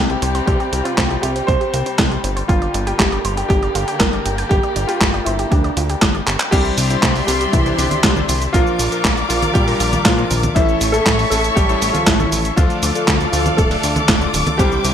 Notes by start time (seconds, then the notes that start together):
Already playing: C2 C3 G3 C4 G4
0.10 G4, closed hi-hat
0.22 C2 C4, closed hi-hat
0.35 C5, closed hi-hat
0.46 C2 C4 G4, kick, closed hi-hat
0.60 G4, closed hi-hat
0.73 C2 G3, closed hi-hat
0.84 C4 F4, closed hi-hat
0.98 C2 C4, kick, snare, clap, closed hi-hat
1.11 G4, closed hi-hat
1.22 C2 E4 G4, closed hi-hat
1.36 C4, closed hi-hat
1.47 C2 C4 C5, kick, closed hi-hat
1.61 G4, closed hi-hat
1.74 C2 A#3, closed hi-hat
1.86 C4, closed hi-hat
1.99 C2 G4, kick, snare, clap, closed hi-hat
2.11 G4, closed hi-hat
2.24 G1 C4, closed hi-hat
2.37 C5, closed hi-hat
2.48 G1 D3 A#3 F4 G4, kick, closed hi-hat
2.62 D5, closed hi-hat
2.74 G1 D4, closed hi-hat
2.87 G4, closed hi-hat
2.98 G1 G4, kick, snare, clap, closed hi-hat
3.12 D5, closed hi-hat
3.25 G1 C5, closed hi-hat
3.37 G4, closed hi-hat
3.49 G1 G4, kick, closed hi-hat
3.63 D5, closed hi-hat
3.75 G1 F4, closed hi-hat
3.88 G4, closed hi-hat
3.99 G1 A#4 D5, kick, snare, clap, closed hi-hat
4.13 D5, closed hi-hat
4.26 G1 G4, closed hi-hat
4.38 G5, closed hi-hat
4.49 G1 G4, kick, closed hi-hat
4.63 D5, closed hi-hat
4.76 G1 D4, closed hi-hat
4.87 F4 G4, closed hi-hat
5.01 G1 G4, kick, snare, clap, closed hi-hat
5.14 D5, closed hi-hat
5.25 G1 E4 C5, closed hi-hat
5.39 G4, closed hi-hat
5.50 D2 D4 G4, kick, closed hi-hat
5.64 D5, closed hi-hat
5.77 D2 F4, closed hi-hat
5.89 G4, closed hi-hat
6.02 G1 D5, kick, snare, clap, closed hi-hat
6.15 D5, closed hi-hat
6.27 G1 G4, clap, closed hi-hat
6.40 G5, clap, closed hi-hat
6.51 C2 C3 G3 D4 E4 G4 C5 D5 E5 C6, kick, closed hi-hat, crash, cabasa
6.65 cabasa
6.78 C2, open hi-hat, cabasa
6.90 C3 D4 E4 G4 C5, closed hi-hat, cabasa
7.03 C2, kick, snare, clap, closed hi-hat, cabasa
7.16 open hi-hat, cabasa
7.27 C2 C3 G3 D4 E4 G4 C5, open hi-hat, cabasa
7.41 closed hi-hat, cabasa
7.52 C2 E3 E4, kick, closed hi-hat, cabasa
7.66 C3 D4 E4 G4 C5, closed hi-hat, cabasa
7.77 C2 D3 D4, open hi-hat, cabasa
7.91 closed hi-hat, high conga, cabasa
8.04 C2, kick, snare, clap, closed hi-hat, cabasa
8.16 C3 D4 E4 G4 C5, high conga, cabasa
8.29 C2, open hi-hat, cabasa
8.42 closed hi-hat, cabasa
8.53 A#1 A#2 F3 A#3 D4 F4 A#4 D5 F5 D6, kick, closed hi-hat, cabasa
8.67 cabasa
8.79 A#1, open hi-hat, cabasa
8.92 A#2 A#3 D4 F4 A#4, closed hi-hat, cabasa
9.05 A#1, kick, snare, clap, closed hi-hat, cabasa
9.17 closed hi-hat, cabasa
9.28 A#1 A#2 F3 A#3 D4 F4 A#4, open hi-hat, cabasa
9.42 closed hi-hat, high conga, cabasa
9.54 A#2 G3 G4, kick, closed hi-hat, cabasa
9.68 A#2 A#3 D4 F4 A#4, open hi-hat, cabasa
9.80 A#1, open hi-hat, cabasa
9.93 closed hi-hat, high conga, cabasa
10.04 A#2 F3 F4, kick, snare, clap, closed hi-hat, cabasa
10.18 A#2 A#3 D4 F4 A#4, cabasa
10.31 A#1, open hi-hat, high conga, cabasa
10.43 closed hi-hat, high conga, cabasa
10.54 A1 A2 E3 A3 C#4 E4 A4 C#5 E5 C#6, kick, closed hi-hat, cabasa
10.69 cabasa
10.81 A1, open hi-hat, cabasa
10.92 A2 A3 C#4 E4 A4, closed hi-hat, cabasa
11.06 A1, kick, snare, clap, closed hi-hat, cabasa
11.19 open hi-hat, cabasa
11.30 A1 A2 A3 C#4 E4 A4, open hi-hat, cabasa
11.44 closed hi-hat, cabasa
11.55 A1 G3 G4, kick, closed hi-hat, cabasa
11.69 A2 A3 C#4 E4 A4, closed hi-hat, cabasa
11.82 A1, open hi-hat, cabasa
11.93 F3 F4, closed hi-hat, high conga, cabasa
12.06 A1 E3 E4, kick, snare, clap, closed hi-hat, cabasa
12.20 A2 A3 C#4 E4 A4, high conga, cabasa
12.32 A1, open hi-hat, cabasa
12.45 closed hi-hat, cabasa
12.56 D2 D3 F3 A3 D4 F4 A4 D5 F5 D6, kick, closed hi-hat, cabasa
12.70 closed hi-hat, cabasa
12.83 D2, open hi-hat, cabasa
12.95 D3 A3 D4 F4 A4, closed hi-hat, cabasa
13.08 D2, kick, snare, clap, closed hi-hat, cabasa
13.21 closed hi-hat, cabasa
13.32 D2 D3 F3 A3 D4 F4 A4, open hi-hat, cabasa
13.46 closed hi-hat, high conga, cabasa
13.57 D1 A3 A4, kick, closed hi-hat, cabasa
13.71 D3 A3 D4 F4 A4, open hi-hat, cabasa
13.84 D2, open hi-hat, cabasa
13.96 closed hi-hat, high conga, cabasa
14.09 D1, kick, snare, clap, closed hi-hat, cabasa
14.21 D3 A3 D4 F4 A4, closed hi-hat, cabasa
14.34 D1, open hi-hat, high conga, cabasa
14.47 closed hi-hat, high conga, cabasa
14.58 C2 C3 G3 C4 D4 E4 G4 C5 E5 G5, kick, closed hi-hat, cabasa
14.72 G4, cabasa
14.84 C2 G3, open hi-hat, cabasa